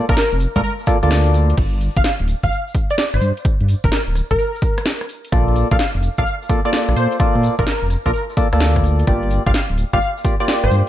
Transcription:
0.09 A#1 A#3 F4 A4 A#4 D5, kick, closed hi-hat, shaker
0.17 A#4, snare, shaker
0.33 F1, closed hi-hat
0.40 open hi-hat, shaker
0.56 A#1 A#3 F4 A4 A#4 D5, kick, closed hi-hat, high conga, shaker
0.64 A#4, shaker
0.79 shaker
0.86 A#3 F4 A4 D5, kick, cross-stick, open hi-hat, shaker
1.02 D2 A#3 F4 A4 D5, closed hi-hat, shaker
1.10 cross-stick, snare, shaker
1.26 closed hi-hat, shaker
1.34 open hi-hat, shaker
1.50 closed hi-hat, shaker
1.58 G1, kick, crash, shaker
1.73 closed hi-hat
1.81 open hi-hat, shaker
1.97 G1 F5, kick, closed hi-hat, shaker
2.04 F5, snare, shaker
2.20 D1, closed hi-hat
2.28 open hi-hat, shaker
2.43 G1 F5, kick, closed hi-hat, shaker
2.51 shaker
2.68 shaker
2.75 kick, open hi-hat, shaker
2.90 D5, closed hi-hat, shaker
2.98 D5, snare, shaker
3.14 G1 C5, cross-stick, closed hi-hat
3.22 G2, open hi-hat, shaker
3.37 closed hi-hat, shaker
3.45 kick, shaker
3.61 G2, closed hi-hat
3.68 open hi-hat, shaker
3.84 G1 A#4, kick, closed hi-hat, shaker
3.92 A#4, snare, shaker
4.07 D1, closed hi-hat
4.15 cross-stick, open hi-hat, shaker
4.31 G1 A#4, kick, closed hi-hat, shaker
4.38 A#4, shaker
4.55 shaker
4.62 kick, open hi-hat, shaker
4.78 cross-stick, closed hi-hat, shaker
4.86 snare, shaker
5.01 cross-stick, closed hi-hat
5.09 open hi-hat, shaker
5.25 closed hi-hat, shaker
5.32 A#1 A#3 F4 A4 D5, kick, shaker
5.48 closed hi-hat
5.55 open hi-hat, shaker
5.71 A#1 A#3 F4 A4 D5 F5, kick, closed hi-hat, shaker
5.79 F5, snare, shaker
5.95 F1, closed hi-hat
6.03 open hi-hat, shaker
6.18 A#1 A#3 F4 A4 D5 F5, kick, closed hi-hat, shaker
6.26 shaker
6.42 shaker
6.49 A#3 F4 A4 D5, kick, open hi-hat, shaker
6.65 A#3 F4 A4 D5, closed hi-hat, shaker
6.73 D5, snare, shaker
6.89 A#1, cross-stick, closed hi-hat
6.96 A#2 C5, open hi-hat, shaker
7.12 closed hi-hat, shaker
7.20 A#3 F4 A4 D5, kick, shaker
7.35 A#2, closed hi-hat
7.43 open hi-hat, shaker
7.59 A#1 A#3 F4 A4 A#4 D5, kick, closed hi-hat, shaker
7.67 A#4, snare, shaker
7.82 F1, closed hi-hat
7.90 cross-stick, open hi-hat, shaker
8.06 A#1 A#3 F4 A4 A#4 D5, kick, closed hi-hat, shaker
8.13 A#4, shaker
8.30 shaker
8.37 A#3 F4 A4 D5, kick, open hi-hat, shaker
8.53 D2 A#3 F4 A4 D5, cross-stick, closed hi-hat, shaker
8.60 snare, shaker
8.76 kick, cross-stick, closed hi-hat, shaker
8.84 open hi-hat, shaker
8.99 closed hi-hat, shaker
9.07 G1 A#3 F4 G4 D5, kick, shaker
9.23 closed hi-hat
9.30 open hi-hat, shaker
9.46 G1 A#3 F4 G4 D5 F5, kick, closed hi-hat, shaker
9.54 F5, snare, shaker
9.70 D1, closed hi-hat
9.78 open hi-hat, shaker
9.93 G1 A#3 F4 G4 D5 F5, kick, closed hi-hat, shaker
10.01 shaker
10.17 shaker
10.24 A#3 F4 G4 D5, kick, open hi-hat, shaker
10.40 A#3 F4 G4 D5, closed hi-hat, shaker
10.48 D5, snare, shaker
10.64 G1 C5, cross-stick, closed hi-hat
10.71 G2, open hi-hat, shaker

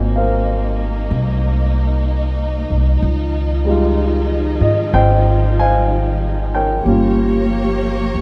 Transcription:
Already playing: G#1 F#3 A#3 C4 D#4 F4 C5 D#5 G#5
0.16 A#4 C5 F5
1.11 C2
2.70 C2
3.02 C#2 D#3 F3 F4
3.64 G3 G#3 D#4
3.69 F4
4.61 G#2 D#5
4.93 G#1 C#4 F4 C5 D#5 G5
5.59 C5 F5 G#5
6.55 A#4 C#5 G5
6.83 G1 F3 G3 A#3 C#4 G4 C#5
6.88 F4
8.14 C#2

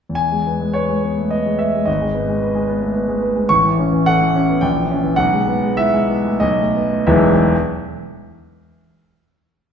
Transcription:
0.09 E2
0.15 G#5
0.32 G#3
0.46 B3
0.61 G#3
0.74 B4 C#5
0.89 G#3
1.03 B3
1.18 A3
1.30 B3 D#5
1.45 G#3
1.58 B4 E5
1.74 G#3
1.85 G#1 D#5
2.01 G#3
2.14 B3
2.29 G#3
2.42 B4
2.55 G#3
2.68 B3
2.81 A3
2.95 B3
3.08 G#3
3.22 B4
3.36 G#3
3.49 A1 C#6
3.65 E3
3.79 C#4
3.92 E3
4.06 A4 F#5
4.21 E3
4.35 C#4
4.49 B3
4.61 A#1 G5
4.76 E3
4.90 C#4
5.03 E3
5.16 B1 F#5
5.33 G#3
5.47 B3
5.64 G#3
5.77 E4 E5
5.94 G#3
6.09 B3
6.25 A3
6.40 B1 D#5
6.59 A3
6.75 B3
6.93 A3
7.07 E1 B1 E3 G#3 B3 E4 E5

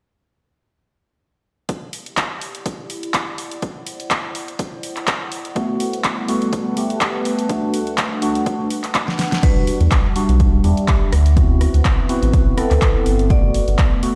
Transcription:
1.69 E4, kick, closed hi-hat
1.81 F#5
1.85 G4
1.93 open hi-hat
2.00 D5
2.06 closed hi-hat
2.17 kick, clap, closed hi-hat
2.42 open hi-hat
2.55 closed hi-hat
2.66 kick, closed hi-hat
2.90 open hi-hat
3.03 closed hi-hat
3.14 kick, clap, closed hi-hat
3.38 open hi-hat
3.51 closed hi-hat
3.61 C5, kick, closed hi-hat
3.87 open hi-hat
4.00 closed hi-hat
4.11 kick, clap, closed hi-hat
4.35 open hi-hat
4.48 closed hi-hat
4.59 kick, closed hi-hat
4.83 open hi-hat
4.97 clap, closed hi-hat
5.07 kick, clap, closed hi-hat
5.32 open hi-hat
5.45 closed hi-hat
5.55 G3 A3 B3 F#4, kick, closed hi-hat
5.69 B4
5.80 open hi-hat
5.93 closed hi-hat
6.04 kick, clap, closed hi-hat
6.19 A5
6.28 A3 B3 F#4, open hi-hat
6.42 closed hi-hat
6.53 kick, closed hi-hat
6.76 A3 B3 G4, open hi-hat
6.90 closed hi-hat
7.01 kick, clap, closed hi-hat
7.25 open hi-hat
7.39 closed hi-hat
7.49 A3 D4 F#4, kick, closed hi-hat
7.74 open hi-hat
7.87 closed hi-hat
7.98 kick, clap, closed hi-hat
8.22 A3 D4 F#4, open hi-hat
8.35 closed hi-hat
8.46 kick, closed hi-hat
8.70 open hi-hat
8.84 clap, closed hi-hat
8.95 kick, clap, closed hi-hat
9.08 snare
9.19 snare, open hi-hat
9.32 snare, closed hi-hat
9.42 G3 D4 F#4 B4, kick, closed hi-hat, crash
9.67 G3 E5, open hi-hat
9.81 E2, closed hi-hat
9.91 kick, clap, closed hi-hat
10.15 G3 D4 F#4, open hi-hat
10.29 B1, closed hi-hat
10.40 kick, closed hi-hat
10.64 E2 G3 D4 G4, open hi-hat
10.77 closed hi-hat
10.88 kick, clap, closed hi-hat
11.13 D2, cross-stick, open hi-hat
11.23 B4, closed hi-hat
11.36 B3 C4 E4 F#4, kick, closed hi-hat
11.61 cross-stick, open hi-hat
11.74 D2, closed hi-hat
11.85 kick, clap, closed hi-hat
12.09 B3 C4 E4 F#4, open hi-hat
12.23 A1, closed hi-hat
12.33 kick, closed hi-hat
12.57 B3 C4 E4 A4, cross-stick, open hi-hat
12.71 D2, clap, open hi-hat
12.82 kick, clap, closed hi-hat
13.06 G1, open hi-hat
13.19 closed hi-hat
13.29 A3 B3 F#4 D5, kick, closed hi-hat
13.38 A4
13.54 open hi-hat
13.68 G1, closed hi-hat
13.79 kick, clap, closed hi-hat
14.02 A3 B3 F#4, open hi-hat

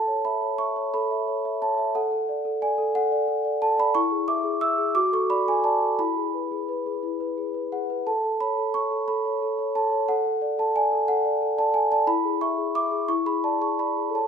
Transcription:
Already playing: A4 A5
0.08 C#5
0.25 E5 B5
0.42 C#5
0.58 E5 C#6
0.76 C#5
0.94 A4 B5
1.11 E5
1.28 C#5
1.45 E5
1.62 C#5 A5
1.78 E5
1.95 A4 F#5
2.11 A4
2.29 D5
2.45 A4
2.62 D5 G#5
2.78 A4
2.95 A4 F#5
3.12 D5
3.28 A4
3.45 D5
3.62 A4 A5
3.78 D5 B5
3.95 E4 C#6
4.11 G#4
4.28 E5 D6
4.44 G#4
4.61 E5 E6
4.78 G#4
4.95 F#4 D6
5.12 A4 C#6
5.30 D5 B5
5.47 A4 G#5
5.64 D5 A5
5.82 A4
5.99 E4 B5
6.17 G#4
6.34 B4
6.51 G#4
6.69 B4
6.86 G#4
7.03 E4
7.20 B4
7.38 G#4
7.54 B4
7.72 G#4 F#5
7.90 B4
8.07 A4 A5
8.24 A4
8.41 C#5 B5
8.57 A4
8.74 C#5 C#6
8.91 A4
9.08 A4 B5
9.25 C#5
9.42 A4
9.59 C#5
9.75 A4 A5
9.92 C#5
10.09 A4 F#5
10.25 A4
10.42 D5
10.58 A4 A5
10.76 D5 G#5
10.92 A4
11.08 A4 F#5
11.25 D5
11.42 A4
11.58 D5 A5
11.74 A4 G#5
11.91 D5 A5
12.07 E4 B5
12.24 G#4
12.41 E5 C#6
12.58 G#4
12.75 E5 D6
12.92 G#4
13.08 E4 C#6
13.26 G#4 B5
13.44 D5 A5
13.61 G#4 C#6
13.79 D5 B5
13.97 G#4
14.10 A4 C#5
14.15 A5

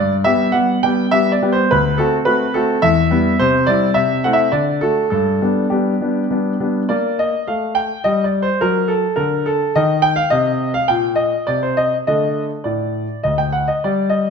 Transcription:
Already playing: G2 D5
0.24 G3 B3 G4 E5
0.52 G3 B3 G4 F#5
0.83 G3 B3 G4 G5
1.11 G3 B3 G4 E5
1.32 D5
1.42 G3 B3 G4
1.52 C5
1.71 D2 B4
1.98 A3 C4 F#4 A4
2.25 A3 C4 F#4 B4
2.54 A3 C4 F#4 A4
2.82 E2 E5
3.10 G3 B3 E4
3.39 C3 C5
3.66 G3 C4 E4 D5
3.94 C3 E5
4.24 A3 C4 E4 F#5
4.33 E5
4.52 D3 D5
4.81 A3 F#4 A4
5.10 G2 A4
5.42 G3 B3 D4
5.70 G3 B3 D4 G4
6.01 G3 B3 D4
6.31 G3 B3 D4
6.60 G3 B3 D4
6.89 A#3 D5
7.19 D#5
7.47 A3 F5
7.75 G5
8.04 G3 D#5
8.24 D5
8.42 C5
8.61 F#3 A#4
8.88 A4
9.16 D3 A#4
9.46 A4
9.75 D#3 D#5
10.02 G5
10.16 F5
10.30 C3 D#5
10.74 F5
10.88 A#2 G5
11.15 D#5
11.47 C3 D5
11.63 C5
11.77 D#5
12.07 D3 A3 A4 D#5
12.64 A2 D5
13.23 D2 D#5
13.38 G5
13.52 F#5
13.68 D#5
13.84 G3 D5
14.09 D#5

